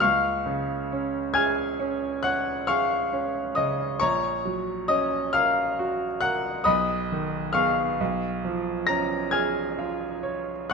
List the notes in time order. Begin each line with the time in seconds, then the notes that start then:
0.00 C#2 F5 C#6 F6
0.46 C#3
0.92 C#4
1.34 G#4 G#5 F6 G#6
1.79 C#4
2.23 C#5 F#5 F#6
2.67 G#4 F5 C#6 F6
3.13 C#4
3.55 C#3 D#5 D#6
4.00 A#1 C#5 A#5 C#6
4.45 F#3
4.88 C#4 D#5 D#6
5.33 A#4 F5 F6
5.79 F#4
6.21 A#4 F#5 F#6
6.64 B1 D#5 B5 D#6
7.12 D#3
7.53 B3 G#4 F5 C#6 F6
8.01 B1
8.45 F3
8.87 C#4 A#5 A#6
9.31 G#4 G#5 F6 G#6
9.79 F4
10.23 C#5
10.70 F#6